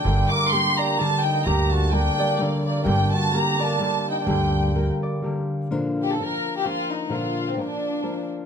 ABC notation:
X:1
M:3/4
L:1/16
Q:"Swing" 1/4=128
K:Gm
V:1 name="Violin section"
g2 d'2 c'2 b2 a2 g2 | b2 a2 g4 d2 d2 | g2 a2 b2 a4 g g- | g4- g z6 z |
[K:Bb] z2 G A B3 G F2 E2 | F3 C D6 z2 |]
V:2 name="Trumpet"
D2 B2 G2 G2 D2 E2 | G2 ^F2 D4 B,2 B,2 | D2 ^F2 G2 D4 E D- | D4- D z6 z |
[K:Bb] z12 | z12 |]
V:3 name="Nylon-string guitar"
[G,,D,G,B,GB]4 [G,B,GB]4 [G,B,GB]4 | [G,,D,G,B,GB]4 [G,B,GB]2 [G,B,GB]2 [G,B,GB]4 | [G,,D,G,B,GB]4 [G,B,GB]2 [G,B,GB]2 [G,B,GB]4 | [G,,D,G,B,GB]4 [G,B,GB]4 [G,B,GB]4 |
[K:Bb] [B,,D,F,B,DB]4 [F,B,DB]4 [F,B,DB]4 | [B,,D,F,B,DB]4 [F,B,DB]4 [F,B,DB]4 |]
V:4 name="Harp" clef=bass
D,2 z2 B,2 d2 D,2 z2 | D,2 z2 B,2 d2 D,2 z2 | D,2 z2 B,2 d2 D,2 z2 | D,2 z2 B,2 d2 D,2 z2 |
[K:Bb] z12 | z12 |]
V:5 name="Upright bass" clef=bass
G,,,2 z8 z2 | D,,8 z4 | G,,,2 z8 z2 | D,,8 z4 |
[K:Bb] z12 | z12 |]